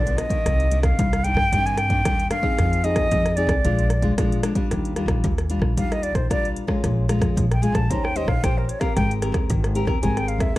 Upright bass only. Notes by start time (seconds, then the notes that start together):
Already playing: B1
0.46 C2
0.99 C2
1.34 G2
1.52 G2
2.05 D#2
2.59 F2
3.12 F2
3.47 C2
3.65 A#1
4.18 A#1
4.71 D#2
5.06 A#1
5.24 D#2
5.59 A#1
5.77 D#2
6.13 A#1
6.31 C2
6.84 A#1
7.19 F2
7.37 A#1
7.72 A#1
7.90 D#2
8.25 A#1
8.44 A#1
8.97 G#1
9.32 D#2
9.50 G#1
9.85 D#2
10.03 G#1
10.38 D#2